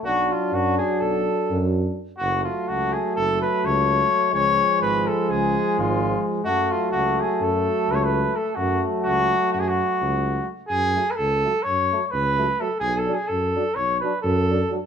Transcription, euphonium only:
\new Staff \with { instrumentName = "Euphonium" } { \clef bass \time 9/8 \key fis \minor \tempo 4. = 85 fis1 r8 | fis1~ fis8 | eis1~ eis8 | fis1~ fis8 |
fis1 r8 | r8 fis8 r8 fis8 r8 fis8 r8 fis8 fis8 | r8 fis8 r8 fis8 r8 fis8 r8 fis8 fis8 | }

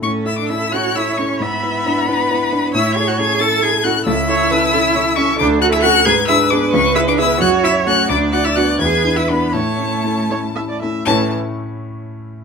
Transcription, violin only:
\new Staff \with { instrumentName = "Violin" } { \time 6/8 \key a \major \tempo 4. = 88 cis'''8 e'''16 d'''16 e'''8 fis'''8 e'''8 cis'''8 | b''2. | e'''8 gis'''16 fis'''16 gis'''8 a'''8 gis'''8 fis'''8 | e'''2~ e'''8 cis'''8 |
d'''8 fis'''16 e'''16 fis'''8 gis'''8 e'''8 d'''8 | cis'''8 e'''16 d'''16 e'''8 fis'''8 e'''8 fis'''8 | d'''8 fis'''16 e'''16 fis'''8 gis'''8. e'''16 b''8 | a''2~ a''8 r8 |
a''8 r2 r8 | }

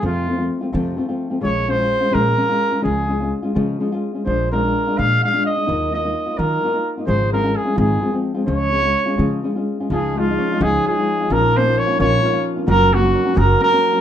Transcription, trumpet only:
\new Staff \with { instrumentName = "Trumpet" } { \time 6/8 \key des \major \tempo 4. = 86 f'4 r2 | des''8 c''4 bes'4. | aes'4 r2 | c''8 bes'4 f''8 f''8 ees''8~ |
ees''8 ees''4 bes'4 r8 | c''8 bes'8 aes'8 aes'4 r8 | des''2 r4 | aes'8 f'4 aes'8 aes'4 |
bes'8 c''8 des''8 des''4 r8 | bes'8 ges'4 bes'8 bes'4 | }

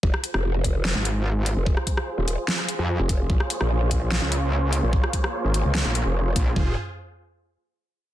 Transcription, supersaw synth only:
\new Staff \with { instrumentName = "Supersaw synth" } { \time 4/4 \key f \minor \tempo 4 = 147 << { <aes' c''>1~ | <aes' c''>1 | <bes c'' des''>1~ | <bes c'' des''>1 |
<f' aes' c''>8 r2. r8 | } \\ { f'1~ | f'1~ | f'1~ | f'1 |
r1 | } >> }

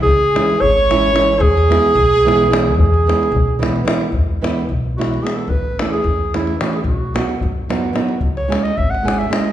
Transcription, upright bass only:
\new Staff \with { instrumentName = "Upright bass" } { \clef bass \time 5/8 \key e \major \tempo 4 = 110 cis,4 gis,,4. | e,4 b,,4. | e,4 b,,4. | e,4 b,,4. |
a,,4 e,4. | b,,4 fis,4. | cis,4 gis,,4. | }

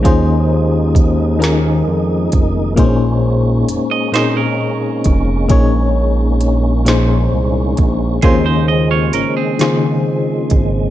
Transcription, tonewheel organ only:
\new Staff \with { instrumentName = "Tonewheel organ" } { \clef bass \time 6/8 \key bes \minor \tempo 4. = 44 << { <ees ees'>2. | <bes des'>2.~ | <bes des'>2. | <des ees>2. | } \\ { aes2. | aes2.~ | aes2.~ | aes2. | } >> }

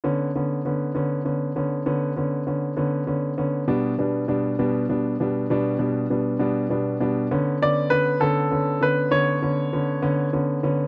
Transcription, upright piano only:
\new Staff \with { instrumentName = "Upright piano" } { \time 6/8 \key b \minor \tempo 4. = 66 <d b cis'>8 <d b cis'>8 <d b cis'>8 <d b cis'>8 <d b cis'>8 <d b cis'>8 | <d b cis'>8 <d b cis'>8 <d b cis'>8 <d b cis'>8 <d b cis'>8 <d b cis'>8 | <b, g b d'>8 <b, g b d'>8 <b, g b d'>8 <b, g b d'>8 <b, g b d'>8 <b, g b d'>8 | <b, g b d'>8 <b, g b d'>8 <b, g b d'>8 <b, g b d'>8 <b, g b d'>8 <b, g b d'>8 |
<d b cis'>8 <d b cis'>8 <d b cis'>8 <d b cis'>8 <d b cis'>8 <d b cis'>8 | <d b cis'>8 <d b cis'>8 <d b cis'>8 <d b cis'>8 <d b cis'>8 <d b cis'>8 | }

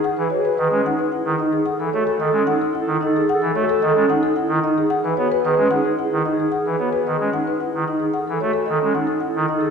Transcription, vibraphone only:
\new Staff \with { instrumentName = "Vibraphone" } { \time 3/4 \key fis \dorian \tempo 4 = 111 gis'16 b'16 fis'16 r16 b'16 cis'16 dis'16 r16 e'16 r16 dis'16 r16 | gis'16 a'16 fis'16 r16 a'16 cis'16 dis'16 r16 e'16 r16 dis'16 r16 | gis'16 a'16 fis'16 r16 a'16 cis'16 dis'16 r16 e'16 r16 dis'16 r16 | gis'16 b'16 fis'16 r16 b'16 cis'16 dis'16 r16 e'16 r16 dis'16 r16 |
gis'16 b'16 fis'16 r16 b'16 cis'16 dis'16 r16 e'16 r16 dis'16 r16 | gis'16 a'16 fis'16 r16 a'16 cis'16 dis'16 r16 e'16 r16 dis'16 r16 | }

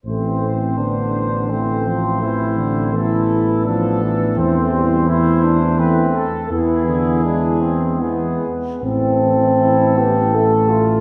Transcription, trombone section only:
\new Staff \with { instrumentName = "Trombone section" } { \time 3/4 \key a \minor \tempo 4 = 83 << { r2. | r2. | r2. | r2 b4 |
c'4. b8 a4 | } \\ { a8 c'8 b4 a4 | c'4 b2 | a8 g8 a2 | b4 gis4 gis8 r8 |
r2. | } >> }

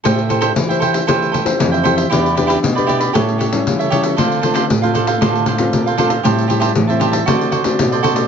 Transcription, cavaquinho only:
\new Staff \with { instrumentName = "Cavaquinho" } { \time 4/4 \key a \minor \tempo 4 = 116 <a' c'' e'' g''>8 <a' c'' e'' g''>16 <a' c'' e'' g''>16 r16 <c'' e'' g''>16 <a' c'' e'' g''>16 <c'' e'' g''>16 <a' c'' e'' g''>8 <a' c'' e'' g''>8. <c'' e'' g''>16 <a' c'' e'' g''>16 <c'' e'' g''>16 | <e' g' b' d''>8 <e' g' b' d''>16 <e' g' b' d''>16 r16 <g' b' d''>16 <e' g' b' d''>16 <g' b' d''>16 <g' a' cis'' e''>8 <g' a' cis'' e''>8. <a' cis'' e''>16 <g' a' cis'' e''>16 <a' cis'' e''>16 | <d' a' c'' f''>8 <d' a' c'' f''>16 <d' a' c'' f''>16 r16 <a' c'' f''>16 <d' a' c'' f''>16 <a' c'' f''>16 <d' a' c'' f''>8 <d' a' c'' f''>8. <a' c'' f''>16 <d' a' c'' f''>16 <a' f''>16 | <g' c'' e'' a''>8 <g' c'' e'' a''>16 <g' c'' e'' a''>16 r16 <c'' e'' a''>16 <g' c'' e'' a''>16 <c'' e'' a''>16 <fis' a' c'' d''>8 <fis' a' c'' d''>8. <a' c'' d''>16 <fis' a' c'' d''>16 <a' c'' d''>16 | }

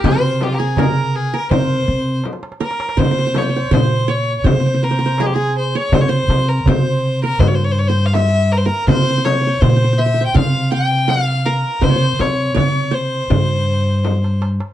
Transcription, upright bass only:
\new Staff \with { instrumentName = "Upright bass" } { \clef bass \time 4/4 \tempo 4 = 81 c2 c8 c8 r4 | c4 bes,4 c2 | c8 c8 c4 g,2 | c4 bes,4 c2 |
c8 c8 c4 g,2 | }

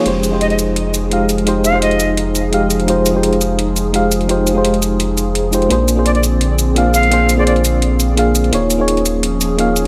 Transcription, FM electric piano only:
\new Staff \with { instrumentName = "FM electric piano" } { \time 4/4 \key bes \dorian \tempo 4 = 170 <aes ees' f' g' c''>8. <aes ees' f' g' c''>16 r2 <aes ees' f' g' f''>16 r8. | <aes ees' f' g' c''>8. <aes ees' f' g' c''>16 r2 <aes ees' f' g' f''>16 r8. | <aes ees' f' g' c''>8. <aes ees' f' g' c''>16 r2 <aes ees' f' g' f''>16 r8. | <aes ees' f' g' c''>8. <aes ees' f' g' c''>16 r2 r8 <aes ees' f' g' c''>8 |
<bes d' f' aes' c''>8. <bes d' f' aes' c''>16 r2 <bes d' f' aes' f''>16 r8. | <bes d' f' aes' c''>8. <bes d' f' aes' c''>16 r2 <bes d' f' aes' f''>16 r8. | <bes ees' f' aes' des''>8. <bes ees' f' aes' des''>16 r2 <bes ees' f' aes' f''>16 r8. | }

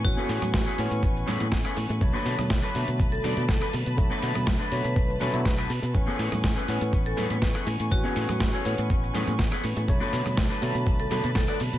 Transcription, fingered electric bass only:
\new Staff \with { instrumentName = "Fingered electric bass" } { \clef bass \time 4/4 \key b \dorian \tempo 4 = 122 a,,16 r16 a,16 a,16 a,,16 r16 a,16 a,16 a,,8 a,16 a,16 a,,16 r16 a,16 a,16 | b,,16 r16 b,16 b,16 b,,16 r16 b,16 b,16 b,,8 b,16 b,16 b,,16 r16 b,16 b,16 | b,,16 r16 b,16 b,16 b,,16 r16 b,16 b,16 b,,8 b,16 b,16 b,,8 b,16 b,16 | a,,16 r16 a,16 a,16 a,,16 r16 a,16 a,16 a,,8 a,16 a,16 a,,16 r16 a,16 a,16 |
a,,16 r16 a,16 a,16 a,,16 r16 a,16 a,16 a,,8 a,16 a,16 a,,16 r16 a,16 a,16 | b,,16 r16 b,16 b,16 b,,16 r16 b,16 b,16 b,,8 b,16 b,16 b,,16 r16 b,16 b,16 | }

